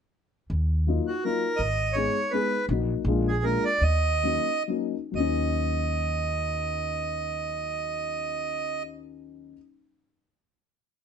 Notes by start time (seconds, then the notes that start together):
0.50 D#2
0.87 F#3 A#3 D#4 F4
1.07 F#4
1.24 F#3 A#3 D#4 F4 A#4
1.56 G#1 D#5
1.93 G#3 B3 D#4 C#5
1.97 G#4
2.31 G#3 B3 D#4 G#4 B4
2.69 A#1 F#3 A#3 D#4 F#4
3.05 A#1 G#3 A#3 D4 F4
3.28 G#4
3.43 G#3 A#3 D4 F4 A#4
3.65 D5
3.81 D#2 D#5
4.23 F#3 A#3 C#4 D#4
4.68 F#3 A#3 C#4 D#4
5.12 D#2 F#3 A#3
5.16 C#4 D#5
5.20 D#4